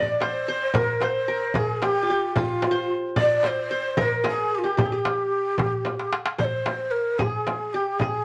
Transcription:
0.00 0.14 G4 medium
0.00 0.21 C5 medium
0.00 0.23 D5 medium
0.00 0.24 D5 loud
0.00 0.93 D5 medium
0.20 0.77 C5 medium
0.20 0.48 C5 medium
0.20 0.77 C5 medium
0.20 darbuka tek medium
0.20 frame drum medium
0.48 1.02 C5 medium
0.48 darbuka ka soft
0.74 1.28 A#4 medium
0.74 1.03 A#4 medium
0.74 1.04 A#4 medium
0.74 frame drum medium
0.74 darbuka dum loud
1.01 1.55 C5 medium
1.01 2.08 C5 medium
1.01 1.56 C5 medium
1.01 darbuka tek medium
1.01 frame drum medium
1.28 2.41 A#4 medium
1.54 1.88 G#4 medium
1.54 1.74 G#4 medium
1.54 1.85 G#4 medium
1.54 frame drum medium
1.54 darbuka dum medium
1.74 1.83 G#4 medium
1.81 2.35 G4 medium
1.81 2.09 G4 medium
1.81 2.36 G4 medium
1.81 darbuka tek medium
1.81 frame drum medium
2.03 2.37 F4 medium
2.09 3.35 G4 medium
2.09 darbuka ka soft
2.34 2.95 F4 medium
2.34 2.93 F4 medium
2.34 3.72 F4 medium
2.34 frame drum medium
2.34 darbuka dum medium
2.62 darbuka tek medium
2.62 frame drum medium
2.71 3.44 C5 medium
3.16 4.15 D5 medium
3.16 3.46 D5 medium
3.16 3.48 D5 loud
3.16 frame drum medium
3.16 darbuka dum medium
3.43 3.70 C5 medium
3.43 3.99 C5 medium
3.43 darbuka tek medium
3.43 frame drum medium
3.47 4.03 C5 medium
3.71 4.76 C5 medium
3.97 5.10 A#4 medium
3.97 4.24 A#4 medium
3.97 frame drum medium
3.97 darbuka dum medium
4.01 4.26 A#4 medium
4.24 4.70 G#4 medium
4.24 4.54 G#4 medium
4.24 darbuka tek medium
4.24 frame drum medium
4.28 4.56 G#4 medium
4.53 4.63 G4 medium
4.53 4.60 G4 medium
4.58 4.68 F4 medium
4.64 4.77 G4 medium
4.64 4.78 G4 medium
4.77 4.92 G4 medium
4.77 4.91 G4 medium
4.77 4.87 G4 medium
4.77 darbuka dum medium
4.77 frame drum medium
4.86 4.94 G#4 medium
4.92 6.08 G4 medium
4.92 6.18 G4 medium
4.92 4.99 G#4 medium
4.98 6.13 G4 medium
5.05 darbuka tek medium
5.05 frame drum medium
5.33 darbuka ka soft
5.58 frame drum medium
5.58 darbuka dum medium
5.85 darbuka tek soft
5.85 frame drum medium
5.99 darbuka ka medium
6.12 darbuka tek medium
6.26 darbuka ka loud
6.38 7.44 C5 medium
6.38 6.46 D5 medium
6.38 frame drum medium
6.38 darbuka dum medium
6.45 6.92 C5 medium
6.66 darbuka tek medium
6.66 frame drum medium
6.91 7.20 A#4 medium
7.19 7.30 G4 medium
7.19 7.80 G#4 medium
7.19 frame drum medium
7.19 darbuka dum medium
7.30 7.75 G#4 medium
7.47 darbuka tek medium
7.47 frame drum medium
7.73 8.01 G4 medium
7.73 8.08 G4 medium
7.99 8.25 G#4 medium
7.99 frame drum medium
7.99 darbuka dum medium

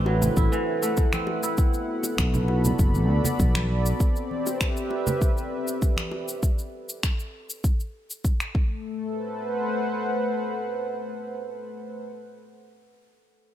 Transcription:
0.00 0.28 A1 medium
0.00 0.82 A3 medium
0.00 1.58 A3 medium
0.00 1.13 C4 medium
0.00 1.14 D4 loud
0.00 2.55 E4 medium
0.00 0.12 G4 loud
0.00 1.59 A4 medium
0.00 2.39 B4 medium
0.00 1.57 C5 medium
0.00 0.12 D5 loud
0.06 1.62 F#3 medium
0.06 high bongo medium
0.22 2.55 F#5 medium
0.22 low conga medium
0.22 shaker medium
0.36 0.47 A1 medium
0.36 1.43 E4 medium
0.36 kick loud
0.36 shaker medium
0.52 1.62 E3 loud
0.52 shaker soft
0.82 2.82 A3 medium
0.82 shaker medium
0.97 kick loud
0.97 shaker soft
1.13 2.93 C4 medium
1.13 finger snap medium
1.13 high conga medium
1.13 shaker soft
1.27 high bongo medium
1.43 3.00 E4 medium
1.43 shaker medium
1.57 4.00 B3 medium
1.57 kick loud
1.57 shaker medium
1.74 shaker soft
1.81 4.00 F#4 medium
1.92 4.98 A4 medium
2.03 4.97 B5 medium
2.03 high bongo soft
2.03 shaker medium
2.18 2.71 B1 medium
2.18 finger snap medium
2.18 kick loud
2.18 shaker medium
2.34 low conga medium
2.34 shaker soft
2.48 high bongo medium
2.61 6.43 D5 medium
2.61 shaker medium
2.65 low conga medium
2.79 3.08 F#1 medium
2.79 kick loud
2.79 shaker medium
2.95 high conga medium
2.95 shaker soft
3.08 3.19 D2 medium
3.24 low conga medium
3.24 shaker medium
3.39 3.92 B1 medium
3.39 kick loud
3.39 high conga medium
3.39 shaker medium
3.55 finger snap medium
3.55 high conga medium
3.55 shaker soft
3.86 shaker medium
4.00 6.42 C4 medium
4.00 kick loud
4.00 shaker medium
4.16 shaker soft
4.28 6.42 G4 medium
4.28 high conga soft
4.39 6.42 B4 medium
4.46 6.42 E5 medium
4.46 high bongo soft
4.46 shaker medium
4.61 finger snap medium
4.61 kick loud
4.61 shaker medium
4.77 shaker soft
4.90 high bongo soft
5.07 low conga medium
5.07 shaker medium
5.22 kick loud
5.22 shaker medium
5.37 shaker soft
5.68 shaker medium
5.82 kick loud
5.82 shaker medium
5.97 finger snap medium
5.97 high conga medium
5.97 shaker soft
6.11 high bongo medium
6.28 shaker medium
6.43 kick medium
6.43 shaker medium
6.59 shaker soft
6.89 shaker medium
7.03 finger snap medium
7.03 kick medium
7.03 shaker medium
7.20 shaker soft
7.50 shaker medium
7.64 kick loud
7.64 shaker medium
7.80 shaker soft
8.10 shaker medium
8.25 kick medium
8.25 shaker soft
8.40 finger snap medium
8.40 shaker soft
8.55 12.03 A3 medium
8.55 kick loud
8.64 12.03 A4 medium
9.04 12.03 B4 medium
9.12 12.03 C5 medium
9.21 12.03 F#5 medium

